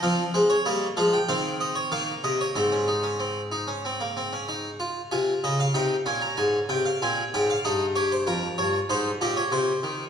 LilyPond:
<<
  \new Staff \with { instrumentName = "Harpsichord" } { \time 4/4 \key aes \major \tempo 4 = 95 << { f''8 c''16 des''16 ees''8 f''16 g''16 f''8 ees''16 des''16 f''8 ees''16 des''16 | c''2.~ c''8 r8 | aes''8 ees''16 f''16 g''8 aes''16 bes''16 aes''8 g''16 f''16 aes''8 g''16 f''16 | ees''8 des''16 c''16 bes'8 des''8 c''8 ees''16 des''16 c''4 | } \\ { c'4 bes8 aes8 c'4 bes4 | c'16 des'16 ees'16 des'16 c'8 ees'16 des'16 c'16 bes16 c'16 des'16 ees'8 f'8 | f'4 ees'8 des'4. c'8 des'8 | ees'8 g'8 f'4 ees'8 g'4. | } >> }
  \new Staff \with { instrumentName = "Harpsichord" } { \clef bass \time 4/4 \key aes \major f8 aes8 g8 f8 ees4 ees8 c8 | aes,2.~ aes,8 r8 | c8 des8 c8 bes,8 aes,8 c8 bes,8 aes,8 | g,4 f,8 g,8 aes,8 bes,8 c8 ees8 | }
>>